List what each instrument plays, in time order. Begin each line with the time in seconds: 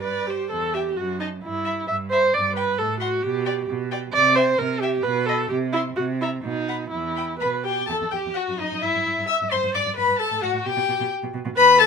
Already playing: cello G2, violin D5
0.02 viola B4, violin D5
0.27 viola G4, violin C5
0.50 cello E2, viola A4
0.73 viola G4, violin E5 G5
0.97 cello F#2, viola F#4
1.20 viola D#4, violin D#5 A5
1.44 cello G2, viola E4
1.65 violin E5 B5
1.88 cello G2, viola E5
2.10 viola C5, violin E5 B5
2.34 cello G2, viola D5
2.56 viola B4, violin G5 B5
2.78 cello A2, viola A4
3.00 viola F#4, violin F#5 C6
3.22 cello B2, viola G4
3.45 violin D5 G5
3.69 cello B2
3.91 violin D5 G5
4.13 cello C3, viola D5
4.36 viola C5, violin E5 G5
4.58 cello C3, viola A#4
4.80 viola G4, violin E5 G5
5.03 cello B2, viola B4
5.26 viola A4, violin D#5 B5
5.49 cello C3, viola G4
5.73 viola E4, violin E5 C6
5.96 cello C3, viola F#4
6.21 viola E4, violin E5 A#5
6.44 cello B2, viola D#4
6.68 violin F#5 B5
6.91 cello E2, viola E4
7.15 violin G5 B5
7.40 cello B2, viola B4, violin B4 B5
7.64 viola G4, violin G4 G5
7.87 cello E2, viola A4, violin A5
7.91 violin A4
8.01 cello E2
8.11 cello E2, viola G4, violin G5
8.16 violin G4
8.26 cello E2
8.34 viola F#4, violin F#4 F#5
8.49 cello F#2
8.59 cello F#2, viola D#4, violin D#4 D#5
8.72 cello F#2
8.81 cello G2, violin E4 E5, viola E4
8.95 cello G2
9.06 cello G2
9.18 cello G2
9.27 viola E5, violin E5 E6
9.42 cello G2
9.51 cello G2, viola C5, violin C5 C6
9.63 cello G2
9.74 cello G2, viola D5, violin D5 D6
9.86 cello G2
9.97 cello G2, viola B4, violin B4 B5
10.08 cello G2
10.19 viola A4, violin A4 A5
10.31 cello A2
10.42 cello A2, viola F#4, violin F#4 F#5
10.54 cello A2
10.64 cello B2, viola G4, violin G4 G5
10.77 cello B2
10.89 cello B2
11.00 cello B2
11.23 cello B2
11.34 cello B2
11.46 cello B2
11.56 cello E2, viola B4, violin B4 B5
11.79 viola A4, violin A4 A5